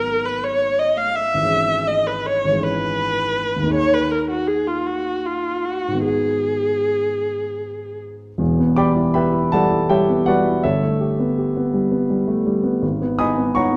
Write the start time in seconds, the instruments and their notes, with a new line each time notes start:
Already playing: grand piano G#1 F#3 G#3 B3 D#4, viola A#4
0.25 viola B4
0.43 viola C#5
0.79 viola D#5
0.97 viola F5
1.15 viola E5
1.34 grand piano G#1 E3
1.41 grand piano G#3 C#4
1.48 grand piano G#4
1.87 viola D#5
2.07 viola B4
2.26 viola C#5
2.44 grand piano G#1 E3
2.51 grand piano G#3 C#4
2.59 grand piano G#4
2.63 viola B4
3.56 grand piano D#2 D#3
3.63 grand piano A#3 D#4
3.70 grand piano G#4, viola C#5
3.93 viola B4
4.11 viola A#4
4.31 viola F#4
4.47 viola G#4
4.68 viola F4
4.87 viola F#4
5.25 viola F4
5.65 viola F#4
5.88 grand piano G#2 D#3
5.95 grand piano B3 D#4
6.02 grand piano F#4, viola G#4
8.38 grand piano E1 E2
8.59 grand piano B3
8.76 grand piano G4 D5 G5 B5 D6
8.96 grand piano E4
9.14 grand piano G4 B4 E5 G5 B5
9.34 grand piano E4
9.52 grand piano G3 A4 D5 F#5 A5
9.71 grand piano E4
9.89 grand piano G3 G4 C#5 E5 G5
10.09 grand piano B3
10.26 grand piano G3 F#4 B4 D5 F#5
10.46 grand piano E4
10.63 grand piano G1 A4 C#5 E5
10.83 grand piano A3
11.01 grand piano G4
11.19 grand piano B3
11.38 grand piano G4
11.57 grand piano B3
11.74 grand piano G3
11.92 grand piano B3
12.10 grand piano G3
12.28 grand piano A3
12.46 grand piano G3
12.63 grand piano B3
12.82 grand piano G#1
13.02 grand piano B3
13.19 grand piano D#4 D#5 G#5 B5 D#6
13.38 grand piano B3
13.55 grand piano D#4 C#5 F#5 A#5 C#6
13.73 grand piano B3